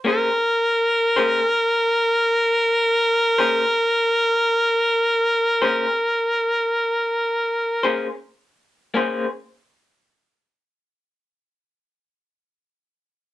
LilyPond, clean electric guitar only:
\new Staff \with { instrumentName = "Clean electric guitar" } { \time 12/8 \key bes \minor \tempo 4. = 54 <bes des' aes' c''>8 r4 <bes des' aes' c''>8 r2 r8 <bes des' aes' c''>8 r4 | r4. <bes des' aes' c''>8 r2 r8 <bes des' aes' c''>8 r4 | <bes des' aes' c''>8 r1 r4. | }